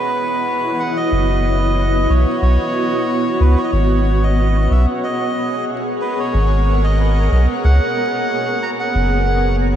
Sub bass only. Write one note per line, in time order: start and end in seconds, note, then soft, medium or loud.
1.12 2.07 F#1 loud
2.10 2.25 B1 medium
2.42 2.57 B1 medium
3.40 3.55 C#2 medium
3.72 4.67 G#1 loud
4.70 4.86 B1 medium
6.34 7.29 G#1 loud
7.32 7.47 B1 medium
7.64 7.79 C#2 medium
8.95 9.76 F#1 loud